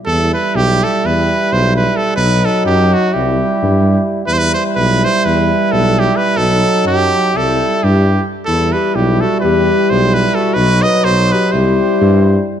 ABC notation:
X:1
M:9/8
L:1/16
Q:3/8=86
K:Em
V:1 name="Trumpet"
A2 B2 G2 A2 B4 c2 B2 A2 | B2 A2 G2 F2 G8 z2 | B/2 c/2 B c2 B2 c2 B4 A2 G2 B2 | A4 G4 A4 G3- G/2 z2 z/2 |
A2 B2 G2 A2 B4 c2 B2 A2 | B2 ^d2 c2 B2 c8 z2 |]
V:2 name="Clarinet"
z16 z2 | z16 z2 | z16 z2 | z12 E4 z2 |
E2 G2 E2 F2 G4 G2 G2 F2 | F2 B2 F2 G2 G8 z2 |]
V:3 name="Trombone"
E16- E2 | ^D8 E8- E2 | E16- E2 | ^D8 E8 z2 |
E16- E2 | ^D8 E8- E2 |]
V:4 name="Euphonium" clef=bass
G,16- G,2 | F,8 G,8- G,2 | G,16- G,2 | F,8 G,8 z2 |
G,16- G,2 | F,8 G,8- G,2 |]
V:5 name="Tuba" clef=bass
E,,4 B,,,4 E,,4 B,,,6 | B,,,4 F,,4 C,,4 G,,6 | E,,4 B,,,4 E,,4 B,,,6 | B,,,4 F,,4 C,,4 G,,6 |
E,,4 B,,,4 E,,4 B,,,6 | B,,,4 B,,,4 C,,4 G,,6 |]